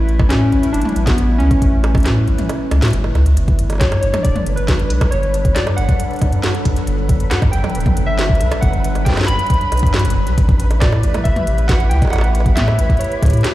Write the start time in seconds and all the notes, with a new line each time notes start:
Already playing: A1 G3 A3 E4 B4 E5
0.09 closed hi-hat
0.19 kick, high bongo
0.29 A2 C#4, snare, closed hi-hat
0.52 A1, closed hi-hat
0.63 closed hi-hat
0.73 G1 D4, closed hi-hat
0.81 closed hi-hat, mid tom
0.89 closed hi-hat, mid tom
0.92 A1, closed hi-hat, mid tom
0.96 mid tom
1.00 mid tom
1.03 B3, kick, snare, closed hi-hat, mid tom
1.18 closed hi-hat
1.38 C#2 C#4, closed hi-hat
1.51 kick, closed hi-hat
1.62 A1, kick, closed hi-hat
1.84 closed hi-hat, high bongo
1.95 kick, closed hi-hat, high bongo
1.97 closed hi-hat
2.00 closed hi-hat
2.03 A2, snare, closed hi-hat
2.06 closed hi-hat
2.27 A1, closed hi-hat
2.38 closed hi-hat, mid tom
2.49 closed hi-hat, high bongo
2.71 C#2, closed hi-hat, high bongo
2.82 A2, snare, closed hi-hat
2.85 closed hi-hat
2.88 closed hi-hat
2.90 G1, closed hi-hat
2.93 closed hi-hat
3.04 high bongo
3.15 C#2, closed hi-hat, high bongo
3.26 C#2, closed hi-hat
3.37 G1 G3 B4 B5, closed hi-hat
3.41 D4
3.48 kick, closed hi-hat
3.59 closed hi-hat
3.70 closed hi-hat, high bongo
3.73 high bongo
3.75 high bongo
3.78 G2 F#3 C#5, kick, snare, closed hi-hat, high bongo
3.84 high bongo
3.86 high bongo
3.89 closed hi-hat, high bongo
3.92 A4, high bongo
3.98 B4 C#5
4.03 G1, closed hi-hat
4.14 closed hi-hat, mid tom, high bongo
4.23 D1 D5, kick, closed hi-hat
4.36 closed hi-hat, mid tom
4.46 G1, closed hi-hat
4.56 B4, closed hi-hat
4.68 kick, snare, closed hi-hat
4.79 closed hi-hat
4.89 B1 B4, closed hi-hat
5.01 kick, closed hi-hat, high bongo
5.11 G1 C#5, closed hi-hat
5.23 closed hi-hat
5.34 closed hi-hat
5.45 kick, closed hi-hat
5.54 G2 D5, snare, closed hi-hat
5.67 closed hi-hat, high bongo
5.76 G1 F#5, closed hi-hat
5.89 kick, closed hi-hat
6.00 closed hi-hat
6.11 closed hi-hat
6.13 closed hi-hat
6.16 closed hi-hat
6.19 closed hi-hat
6.22 B1, kick, closed hi-hat, high bongo
6.33 G2, closed hi-hat
6.44 snare, closed hi-hat
6.54 closed hi-hat
6.65 B1, kick, closed hi-hat
6.76 closed hi-hat
6.87 G1, closed hi-hat
7.09 kick, closed hi-hat
7.20 closed hi-hat
7.30 G2 F#5, snare, closed hi-hat
7.42 kick, closed hi-hat, high bongo
7.52 G1 G5, closed hi-hat
7.64 closed hi-hat, mid tom, high bongo
7.69 closed hi-hat
7.75 D1, closed hi-hat
7.80 closed hi-hat
7.86 kick, closed hi-hat, mid tom
7.97 G1, closed hi-hat
8.06 E5
8.19 snare, closed hi-hat
8.30 kick
8.35 closed hi-hat
8.39 B1 E5, closed hi-hat
8.51 closed hi-hat, high bongo
8.61 G1 F#5, kick, closed hi-hat
8.73 closed hi-hat
8.84 closed hi-hat
8.95 closed hi-hat, high bongo
9.05 G2 G5, kick, snare, closed hi-hat
9.10 snare
9.14 snare
9.17 snare, closed hi-hat, high bongo
9.21 snare
9.24 G1 B5, snare, closed hi-hat
9.39 closed hi-hat
9.46 closed hi-hat
9.50 kick, closed hi-hat
9.54 closed hi-hat
9.61 closed hi-hat
9.72 B1, closed hi-hat, high bongo
9.77 closed hi-hat
9.79 G2, kick, closed hi-hat
9.87 closed hi-hat
9.94 snare, closed hi-hat
9.99 closed hi-hat
10.05 G1, closed hi-hat
10.10 closed hi-hat
10.16 G1
10.27 B1, closed hi-hat
10.38 A1 A3, kick, closed hi-hat
10.49 E4 E5, kick, closed hi-hat
10.60 closed hi-hat
10.71 closed hi-hat, high bongo
10.79 A2 G4 D5, kick, snare, closed hi-hat
10.92 closed hi-hat, high bongo
11.03 A1, closed hi-hat
11.14 closed hi-hat, mid tom, high bongo
11.24 G1 E5, kick, closed hi-hat
11.36 closed hi-hat, mid tom
11.47 A1, closed hi-hat
11.58 closed hi-hat
11.68 F#5, kick, snare, closed hi-hat
11.80 closed hi-hat
11.89 C#2 G5, closed hi-hat
12.02 kick, closed hi-hat, high bongo
12.05 high bongo
12.07 high bongo
12.10 A1 F#5, closed hi-hat, high bongo
12.13 high bongo
12.16 high bongo
12.18 high bongo
12.21 closed hi-hat, high bongo
12.35 closed hi-hat
12.40 high bongo
12.46 kick, closed hi-hat
12.55 A2 E5, snare, closed hi-hat
12.68 closed hi-hat, high bongo
12.79 A1, closed hi-hat
12.90 kick, closed hi-hat
12.97 C#5, closed hi-hat
13.01 closed hi-hat
13.04 closed hi-hat
13.12 closed hi-hat
13.22 C#2, kick, closed hi-hat, high bongo
13.25 kick, closed hi-hat
13.28 kick, closed hi-hat
13.31 A2, kick, closed hi-hat
13.37 closed hi-hat
13.41 snare, closed hi-hat
13.44 closed hi-hat